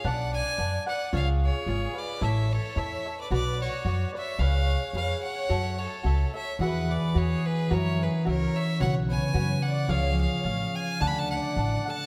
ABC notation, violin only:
X:1
M:2/4
L:1/16
Q:1/4=110
K:F#m
V:1 name="Violin"
f2 g4 f2 | ^e2 c4 d2 | e2 c2 e3 d | d2 c4 e2 |
^e4 e2 f2- | f2 c4 e2 | f2 d2 c2 B2 | c2 B2 c2 e2 |
f2 g4 f2 | ^e2 e4 g2 | a/2 b/2 a f4 a2 |]